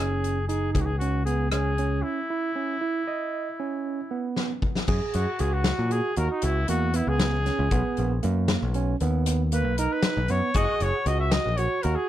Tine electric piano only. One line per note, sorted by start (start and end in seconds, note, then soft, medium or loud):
0.00 0.38 C#4 medium
0.49 0.89 D#4 medium
1.01 1.21 C#4 medium
1.27 1.47 B3 medium
1.53 1.73 C#4 medium
1.79 2.19 C#4 medium
2.30 2.50 E4 medium
2.56 2.76 C#4 medium
2.81 3.02 E4 medium
3.08 3.48 D#5 medium
3.60 4.00 C#4 medium
4.11 4.51 B3 medium
4.88 5.28 G#4 medium
5.39 5.80 F#4 medium
5.90 6.11 F#4 medium
6.17 6.57 F#4 medium
6.69 6.89 A#3 medium
6.94 7.34 B3 medium
7.46 7.66 C#4 medium
7.72 8.12 B3 medium
8.23 8.63 A#3 medium
8.75 8.95 C#4 medium
9.02 9.41 B3 medium
9.53 9.72 A#3 medium
9.79 10.19 D#4 medium
10.30 10.50 B3 medium
10.56 10.96 G#4 medium
11.08 11.47 F#4 medium
11.59 11.79 F#4 medium
11.84 12.09 F#4 medium